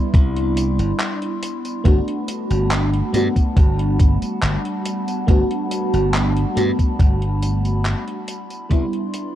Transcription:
0.00 1.87 G3 loud
0.00 1.85 B3 medium
0.00 1.86 D4 medium
0.00 1.81 E4 medium
0.00 1.87 E4 loud
0.00 1.81 D5 medium
0.00 1.81 B5 medium
0.00 1.81 C6 medium
0.14 0.78 C2 medium
0.14 kick loud
0.14 closed hi-hat medium
0.14 tambourine soft
0.36 closed hi-hat soft
0.57 closed hi-hat medium
0.57 tambourine medium
0.79 0.91 G1 medium
0.79 closed hi-hat soft
0.79 tambourine soft
1.00 clap loud
1.00 closed hi-hat medium
1.00 tambourine soft
1.22 closed hi-hat soft
1.43 closed hi-hat loud
1.43 tambourine medium
1.65 closed hi-hat soft
1.65 tambourine soft
1.84 1.99 G1 medium
1.84 8.24 G3 medium
1.84 3.08 A3 medium
1.84 3.09 B3 medium
1.84 3.09 D4 medium
1.84 3.10 F#4 loud
1.84 8.24 F#5 medium
1.84 8.24 A5 medium
1.84 9.35 B5 medium
1.84 kick loud
1.84 closed hi-hat medium
1.84 tambourine soft
2.08 closed hi-hat soft
2.28 closed hi-hat medium
2.28 tambourine medium
2.50 3.01 G1 medium
2.50 closed hi-hat soft
2.50 tambourine soft
2.71 clap loud
2.71 closed hi-hat medium
2.71 tambourine soft
2.94 closed hi-hat soft
3.13 3.27 G2 medium
3.13 5.23 A3 medium
3.13 5.23 B3 medium
3.13 5.24 D4 medium
3.13 5.24 F#4 loud
3.13 closed hi-hat medium
3.13 tambourine medium
3.36 kick medium
3.36 closed hi-hat soft
3.36 tambourine soft
3.57 4.21 G1 loud
3.57 kick loud
3.57 closed hi-hat medium
3.57 tambourine soft
3.79 closed hi-hat soft
3.99 kick loud
3.99 closed hi-hat medium
3.99 tambourine medium
4.22 closed hi-hat soft
4.22 tambourine soft
4.42 4.56 G1 loud
4.42 clap loud
4.42 closed hi-hat medium
4.42 tambourine soft
4.65 closed hi-hat soft
4.85 closed hi-hat medium
4.85 tambourine medium
5.08 closed hi-hat soft
5.08 tambourine soft
5.27 5.42 G1 loud
5.27 6.51 A3 medium
5.27 6.52 B3 medium
5.27 6.52 D4 medium
5.27 6.53 F#4 loud
5.27 kick loud
5.27 closed hi-hat medium
5.27 tambourine soft
5.51 closed hi-hat soft
5.71 closed hi-hat medium
5.71 tambourine medium
5.93 6.44 G1 medium
5.93 closed hi-hat soft
5.93 tambourine soft
6.14 clap loud
6.14 closed hi-hat medium
6.14 tambourine soft
6.37 closed hi-hat soft
6.55 6.70 G2 medium
6.55 8.25 A3 medium
6.55 8.26 B3 medium
6.55 8.26 D4 medium
6.55 8.26 F#4 loud
6.55 closed hi-hat medium
6.55 tambourine medium
6.79 kick medium
6.79 closed hi-hat soft
6.79 tambourine soft
6.99 7.94 G1 medium
6.99 kick loud
6.99 closed hi-hat medium
6.99 tambourine soft
7.22 closed hi-hat soft
7.43 closed hi-hat medium
7.43 tambourine medium
7.65 closed hi-hat soft
7.65 tambourine soft
7.85 clap loud
7.85 closed hi-hat medium
7.85 tambourine soft
8.08 closed hi-hat soft
8.28 9.35 E4 medium
8.28 9.35 D5 medium
8.28 9.35 C6 medium
8.28 closed hi-hat medium
8.28 tambourine medium
8.50 closed hi-hat soft
8.50 tambourine soft
8.69 8.84 C2 loud
8.69 9.35 G3 loud
8.69 9.35 B3 medium
8.69 9.35 D4 medium
8.69 9.35 E4 loud
8.69 kick loud
8.69 closed hi-hat medium
8.69 tambourine soft
8.93 closed hi-hat soft
9.14 closed hi-hat medium
9.14 tambourine medium

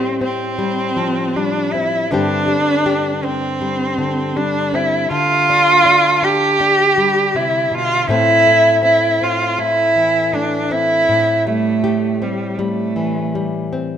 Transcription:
0.00 2.10 A2 medium
0.00 0.58 G3 medium
0.00 0.18 C4 loud
0.00 0.21 C4 medium
0.00 2.13 G4 medium
0.21 1.72 C4 medium
0.21 1.38 C4 medium
0.59 1.36 G3 medium
0.96 2.05 F3 medium
1.36 2.12 G3 medium
1.36 1.74 D4 medium
1.73 2.07 C4 medium
1.73 2.13 E4 medium
2.11 5.06 G2 medium
2.11 3.97 D3 medium
2.11 2.47 G3 medium
2.11 3.22 C4 medium
2.11 3.25 D4 loud
2.11 2.86 G4 medium
2.48 3.61 G3 medium
2.86 5.06 G4 medium
3.23 4.73 C4 medium
3.23 4.38 C4 medium
3.61 4.35 G3 medium
3.98 5.09 D3 medium
4.37 6.97 G3 medium
4.37 4.77 D4 loud
4.74 5.06 C4 medium
4.74 5.12 E4 loud
5.11 8.09 D3 medium
5.11 6.26 F4 loud
5.50 5.84 D4 medium
5.85 6.21 D4 medium
6.23 6.59 D4 medium
6.23 7.38 G4 loud
6.60 8.05 D4 medium
6.98 8.09 G3 medium
7.35 7.71 C3 medium
7.35 7.76 E4 medium
7.71 8.08 B2 medium
7.71 8.10 F4 loud
8.09 11.07 A2 medium
8.09 8.46 A3 medium
8.09 8.82 C4 medium
8.09 8.80 E4 loud
8.47 9.58 A3 medium
8.83 9.21 C4 medium
8.83 9.25 E4 loud
9.21 10.71 C4 medium
9.21 9.61 F4 medium
9.58 10.32 A3 medium
9.58 10.36 E4 loud
9.96 11.03 E3 medium
10.33 11.03 A3 medium
10.33 10.73 D4 medium
10.71 12.21 C4 medium
10.71 11.46 E4 loud
11.09 13.97 A2 medium
11.47 12.58 G3 medium
11.47 12.24 A3 loud
11.84 13.97 G4 medium
12.22 12.61 G3 medium
12.22 13.71 C4 medium
12.59 13.34 G3 medium
12.59 13.73 A3 medium
12.96 13.97 E3 medium
13.35 13.97 G3 medium
13.73 13.97 C4 medium

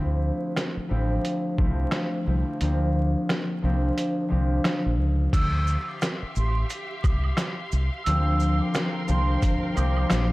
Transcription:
0.00 0.30 D2 loud
0.00 0.88 D2 medium
0.00 0.88 F3 medium
0.00 0.89 A3 medium
0.00 0.90 C4 medium
0.00 0.90 E4 medium
0.00 0.91 G4 loud
0.56 cross-stick medium
0.56 snare loud
0.56 closed hi-hat medium
0.77 muted fingered electric bass stroke soft
0.89 1.17 A1 medium
0.89 1.57 D2 medium
0.89 1.58 F3 medium
0.89 1.54 A3 medium
0.89 1.54 C4 medium
0.89 1.54 E4 medium
0.89 1.54 G4 loud
1.25 closed hi-hat medium
1.58 1.85 C2 medium
1.58 2.25 D2 loud
1.58 2.25 F3 medium
1.58 2.22 A3 medium
1.58 2.23 C4 medium
1.58 2.23 E4 medium
1.58 2.23 G4 loud
1.58 kick medium
1.91 cross-stick loud
1.91 snare loud
1.91 closed hi-hat medium
2.26 2.43 C2 medium
2.26 2.60 D2 medium
2.26 2.60 F3 medium
2.26 2.58 A3 medium
2.26 2.59 C4 medium
2.26 2.59 E4 medium
2.26 2.59 G4 medium
2.61 3.61 D2 medium
2.61 3.14 D2 loud
2.61 3.62 F3 medium
2.61 3.63 A#3 medium
2.61 3.63 C4 medium
2.61 3.63 D4 medium
2.61 3.64 G4 medium
2.61 closed hi-hat medium
3.29 cross-stick medium
3.29 snare loud
3.29 closed hi-hat medium
3.62 3.90 C2 medium
3.62 4.27 D2 medium
3.62 4.28 F3 medium
3.62 4.27 A#3 medium
3.62 4.27 C4 medium
3.62 4.27 D4 medium
3.62 4.27 G4 loud
3.98 closed hi-hat medium
4.28 4.58 C2 medium
4.28 5.38 D2 loud
4.28 5.38 F3 medium
4.28 4.94 A#3 medium
4.28 4.94 C4 medium
4.28 4.94 D4 medium
4.28 4.94 G4 loud
4.64 cross-stick loud
4.64 snare loud
4.64 closed hi-hat medium
4.86 5.00 A#1 medium
5.00 5.26 C#2 medium
5.33 5.76 D2 loud
5.33 8.04 G4 medium
5.33 8.04 E5 medium
5.33 10.32 F5 medium
5.33 10.32 C6 medium
5.33 5.84 E6 loud
5.33 kick loud
5.33 closed hi-hat medium
5.33 crash loud
5.33 maracas medium
5.67 maracas medium
5.67 shaker soft
5.88 6.00 D6 medium
6.02 cross-stick loud
6.02 snare loud
6.02 closed hi-hat medium
6.02 maracas medium
6.22 muted fingered electric bass stroke soft
6.35 6.63 A1 medium
6.35 6.55 C6 medium
6.35 shaker medium
6.35 maracas soft
6.70 closed hi-hat medium
6.70 maracas medium
7.02 7.31 C2 medium
7.02 7.54 D6 medium
7.02 kick medium
7.02 high woodblock medium
7.02 shaker medium
7.02 maracas medium
7.24 high woodblock medium
7.37 cross-stick loud
7.37 snare loud
7.37 closed hi-hat medium
7.37 maracas medium
7.72 7.88 C2 medium
7.72 maracas medium
7.72 shaker medium
8.04 8.60 D2 loud
8.04 9.07 D2 medium
8.04 9.07 F3 medium
8.04 9.08 A#3 medium
8.04 9.09 C4 medium
8.04 10.32 A#4 medium
8.04 10.32 G5 medium
8.04 8.56 E6 loud
8.04 closed hi-hat medium
8.04 maracas medium
8.08 9.09 D4 medium
8.08 9.09 G4 loud
8.40 maracas medium
8.40 shaker soft
8.61 8.73 D6 medium
8.74 cross-stick loud
8.74 snare loud
8.74 closed hi-hat medium
8.74 maracas medium
9.08 9.35 C2 medium
9.08 9.72 D2 medium
9.08 9.73 F3 medium
9.08 9.72 A#3 medium
9.08 9.72 C4 medium
9.08 9.72 D4 medium
9.08 9.73 G4 loud
9.08 9.27 C6 medium
9.08 maracas soft
9.08 shaker medium
9.42 kick loud
9.42 closed hi-hat medium
9.42 maracas medium
9.74 10.04 C2 medium
9.74 10.32 D2 loud
9.74 10.32 F3 medium
9.74 10.32 A#3 medium
9.74 10.32 C4 medium
9.74 10.32 D4 medium
9.74 10.32 G4 loud
9.74 10.28 D6 medium
9.74 high woodblock medium
9.74 shaker medium
9.74 maracas medium
9.96 high woodblock medium
10.10 10.32 A#1 loud
10.10 cross-stick loud
10.10 snare loud
10.10 closed hi-hat medium
10.10 maracas medium

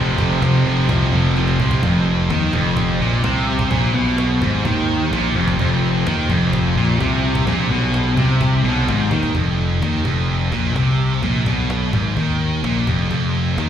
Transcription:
0.00 0.15 F1 loud
0.00 0.15 F2 loud
0.00 0.16 C3 loud
0.00 0.17 F3 loud
0.00 1.79 F3 medium
0.00 1.81 C4 medium
0.00 1.81 G4 medium
0.16 0.39 F1 medium
0.16 0.39 F2 medium
0.16 0.40 C3 medium
0.16 0.40 F3 loud
0.16 cajon bass loud
0.41 0.62 F1 loud
0.41 0.63 F2 loud
0.41 0.64 C3 loud
0.41 0.65 F3 loud
0.41 cajon slap loud
0.65 0.86 F1 medium
0.65 0.87 F2 medium
0.65 0.87 C3 medium
0.65 0.88 F3 loud
0.88 1.10 C2 loud
0.88 1.10 F2 medium
0.88 1.10 C3 loud
0.88 1.11 F3 loud
0.88 cajon bass loud
1.11 1.33 F1 loud
1.11 1.33 F2 medium
1.11 1.34 C3 medium
1.11 1.34 F3 medium
1.34 1.56 F1 medium
1.34 1.58 F2 loud
1.34 1.58 C3 loud
1.34 1.59 F3 loud
1.34 cajon slap medium
1.48 cajon slap medium
1.59 1.80 C2 medium
1.59 1.81 F2 medium
1.59 1.82 C3 medium
1.59 1.82 F3 medium
1.59 cajon bass loud
1.71 cajon bass loud
1.82 2.27 F1 loud
1.82 2.29 F2 loud
1.82 9.30 F3 medium
1.82 9.30 G4 medium
1.82 9.30 C5 medium
1.82 cajon bass loud
2.30 2.52 D#2 medium
2.30 2.53 D#3 loud
2.30 cajon slap loud
2.53 2.97 F1 loud
2.53 3.00 F2 loud
2.53 cajon bass medium
2.77 cajon bass loud
3.00 3.22 A#1 loud
3.00 3.23 A#2 loud
3.23 3.67 C2 medium
3.23 3.70 C3 loud
3.23 cajon slap loud
3.59 cajon bass medium
3.70 3.93 A#1 loud
3.70 3.94 A#2 loud
3.70 cajon bass loud
3.94 4.38 B1 loud
3.94 4.41 B2 loud
4.18 cajon slap loud
4.41 4.63 G#1 medium
4.41 4.64 G#2 medium
4.41 cajon bass medium
4.65 5.09 D#2 loud
4.65 5.11 D#3 loud
4.65 cajon bass loud
5.11 5.34 A#1 loud
5.11 5.34 A#2 loud
5.11 cajon slap loud
5.34 5.58 F1 loud
5.34 5.58 F2 loud
5.48 cajon bass loud
5.59 6.03 F1 loud
5.59 6.05 F2 loud
5.59 cajon bass loud
6.06 6.28 D#2 loud
6.06 6.29 D#3 loud
6.06 cajon slap loud
6.29 6.73 F1 loud
6.29 6.75 F2 loud
6.29 cajon bass medium
6.53 cajon bass loud
6.76 6.98 A#1 loud
6.76 6.99 A#2 loud
7.00 7.43 C2 loud
7.00 7.46 C3 loud
7.00 cajon slap loud
7.35 cajon bass loud
7.47 7.69 A#1 medium
7.47 7.70 A#2 loud
7.47 cajon bass loud
7.70 8.14 B1 loud
7.70 8.16 B2 loud
7.94 cajon slap loud
8.16 8.61 C2 medium
8.16 8.63 C3 medium
8.16 cajon bass medium
8.41 cajon bass loud
8.63 8.86 B1 loud
8.63 8.86 B2 loud
8.87 9.09 G#1 medium
8.87 9.10 G#2 loud
8.87 cajon slap loud
9.10 9.33 D#2 medium
9.10 9.33 D#3 loud
9.10 cajon bass medium
9.23 cajon bass loud
9.33 9.78 F1 medium
9.33 9.80 F2 medium
9.33 cajon bass loud
9.58 cajon slap soft
9.80 10.03 D#2 medium
9.80 10.04 D#3 medium
9.80 cajon slap loud
10.04 10.49 F1 medium
10.04 10.51 F2 medium
10.04 cajon bass medium
10.29 cajon slap soft
10.51 10.74 A#1 medium
10.51 10.74 A#2 medium
10.51 cajon bass loud
10.74 11.20 C2 medium
10.74 11.21 C3 loud
10.74 cajon slap loud
10.99 cajon slap soft
11.21 11.45 A#1 loud
11.21 11.44 A#2 loud
11.21 cajon bass loud
11.44 11.90 B1 medium
11.44 11.92 B2 loud
11.44 cajon bass loud
11.70 cajon slap loud
11.92 12.15 G#1 medium
11.92 12.16 G#2 medium
11.92 cajon bass loud
12.15 12.61 D#2 loud
12.15 12.62 D#3 medium
12.15 cajon bass medium
12.41 cajon slap soft
12.63 12.86 A#1 medium
12.63 12.86 A#2 loud
12.63 cajon slap loud
12.86 13.09 F1 medium
12.86 13.08 F2 medium
12.86 cajon bass medium
13.09 13.55 F1 loud
13.09 13.57 F2 loud
13.09 cajon bass loud
13.34 cajon slap soft
13.57 13.69 D#2 medium
13.57 13.69 D#3 medium
13.57 cajon slap loud

